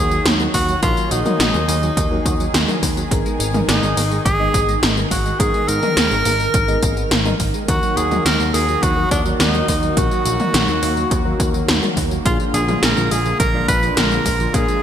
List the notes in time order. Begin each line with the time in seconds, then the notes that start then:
Already playing: D#2 D#3 F#3 A#3 D#4 F#4 G#4 A#4
0.11 F#3, tambourine
0.25 D#2 D#3, snare, closed hi-hat, tambourine
0.40 F#3 A#3 D#4 F#4 A#4, tambourine
0.54 D#2 A#3 F#4, kick, open hi-hat, tambourine
0.68 F#3, tambourine
0.83 A#1 D#3 A#3 D#4 F4 F#4 G#4 A#4, kick, closed hi-hat, tambourine
0.97 F#3, tambourine
1.11 A#1 D#4 F#4, closed hi-hat, tambourine
1.26 F#3 A#3 D#4 F#4 A#4, mid tom, tambourine
1.40 A#1 D#3, snare, closed hi-hat, tambourine
1.54 D#2 F#3, tambourine
1.68 D#2 A#3 D#4 F#4 A#4, open hi-hat, tambourine
1.83 F#3, tambourine
1.97 D#2 D#3, kick, closed hi-hat, tambourine
2.11 F#3 A#3 D#4 F#4 A#4
2.25 D#2 F#4, kick, closed hi-hat, tambourine
2.40 F#3, tambourine
2.54 D#2 D#3, snare, closed hi-hat, tambourine
2.68 F#3 A#3 D#4 F#4 A#4, mid tom, tambourine
2.83 D#2 A#3, kick, open hi-hat, tambourine
2.97 F#3, tambourine
3.11 G#1 D#3 B3 D#4 G#4 A#4, kick, closed hi-hat, tambourine
3.25 G#3, tambourine
3.40 G#1 D#4, closed hi-hat, tambourine
3.54 G#3 B3 D#4 G#4 A#4, mid tom, tambourine
3.68 G#1 D#3 D#4, snare, closed hi-hat, tambourine
3.83 G#1 G#3, tambourine
3.97 G#1 A#3 B3 D#4 G#4 A#4, open hi-hat, tambourine
4.11 G#3, tambourine
4.25 G#1 D#3 G#4, kick, closed hi-hat, tambourine
4.40 G#3 B3 D#4 G#4 D#5
4.54 G#1 D#4, kick, closed hi-hat, tambourine
4.68 G#3, tambourine
4.82 G#1 D#3, snare, closed hi-hat, tambourine
4.97 G#3 B3 D#4 G#4 A#4, tambourine
5.11 G#1 A#3 F#4, kick, open hi-hat, tambourine
5.25 G#3, tambourine
5.40 G#2 D#3 B3 D#4 G#4 A#4, kick, closed hi-hat, tambourine
5.54 G#3, tambourine
5.68 G#2 D#4 A#4, closed hi-hat, tambourine
5.83 G#3 B3 D#4 G#4 A#4, mid tom, tambourine
5.97 D#2 D#3, snare, closed hi-hat, tambourine
6.11 G#1 G#3, tambourine
6.25 G#1 A#3 B3 D#4 G#4 A#4, open hi-hat, tambourine
6.40 G#3, tambourine
6.54 G#1 D#3, kick, closed hi-hat, tambourine
6.68 G#3 B3 D#4 G#4 D#5, tambourine
6.82 G#1 A#3, kick, closed hi-hat, tambourine
6.97 B3, tambourine
7.11 G#1 A#3, snare, closed hi-hat, tambourine
7.25 B3 D#4 G#4 A#4, mid tom, tambourine
7.40 G#1 D#3, kick, open hi-hat, tambourine
7.54 G#3, tambourine
7.68 D#2 D#3 F#3 A#3 D#4 F#4 A#4, kick, closed hi-hat, tambourine
7.83 F#3, tambourine
7.97 D#2 F#4 G#4, closed hi-hat, tambourine
8.11 F#3 A#3 D#4 F#4 A#4, mid tom, tambourine
8.25 D#2 D#3 A#4, snare, closed hi-hat, tambourine
8.40 D#2 F#3, tambourine
8.54 D#2 A#3 D#4 F#4 G#4 A#4, open hi-hat, tambourine
8.68 F#3, tambourine
8.83 D#2 D#3 F#4, kick, closed hi-hat, tambourine
8.97 F#3 A#3 D#4 F#4 A#4
9.11 D#2 D4 F#4, kick, closed hi-hat, tambourine
9.25 F#3, tambourine
9.40 D#2 D#3 D#4, snare, closed hi-hat, tambourine
9.54 F#3 A#3 D#4 F#4 A#4, tambourine
9.68 D#2 A#3, kick, open hi-hat, tambourine
9.83 F#3, tambourine
9.97 A#1 D#3 A#3 D#4 F#4 A#4, kick, closed hi-hat, tambourine
10.11 F#3, tambourine
10.25 A#1 F#4, closed hi-hat, tambourine
10.40 F#3 A#3 D#4 F#4 A#4, mid tom, tambourine
10.54 A#1 D#3, snare, closed hi-hat, tambourine
10.68 D#2 F#3, tambourine
10.82 D#2 A#3 D#4 F#4 A#4, open hi-hat, tambourine
10.97 F#3, tambourine
11.11 D#2 D#3, kick, closed hi-hat, tambourine
11.25 F#3 A#3 D#4 F#4 A#4
11.40 D#2 F#4, kick, closed hi-hat, tambourine
11.54 F#3, tambourine
11.68 D#2 D#3, snare, closed hi-hat, tambourine
11.82 F#3 A#3 D#4 F#4 A#4, mid tom, tambourine
11.97 D#2 A#3, kick, open hi-hat, tambourine
12.11 F#3, tambourine
12.25 A#1 D3 G#3 A#3 D4 F4 G#4, kick, closed hi-hat, tambourine
12.40 F3, tambourine
12.54 A#1 D4 G#4, closed hi-hat, tambourine
12.68 F3 A#3 D4 F4 G#4, mid tom, tambourine
12.83 A#1 D3 A#4, snare, closed hi-hat, tambourine
12.97 A#1 F3, tambourine
13.11 A#1 G#3 A#3 D4 F4 G#4, open hi-hat, tambourine
13.26 F3, tambourine
13.40 A#1 D3 A#4, kick, closed hi-hat, tambourine
13.54 F3 A#3 D4 F4 D5
13.68 A#1 D4 B4, kick, closed hi-hat, tambourine
13.83 F3, tambourine
13.97 A#1 D3 A#4, snare, closed hi-hat, tambourine
14.11 F3 A#3 D4 F4 G#4, tambourine
14.25 A#1 G#3, kick, open hi-hat, tambourine
14.40 F3, tambourine
14.54 A#2 D3 A#3 D4 F4 G#4, kick, closed hi-hat, tambourine
14.68 F3, tambourine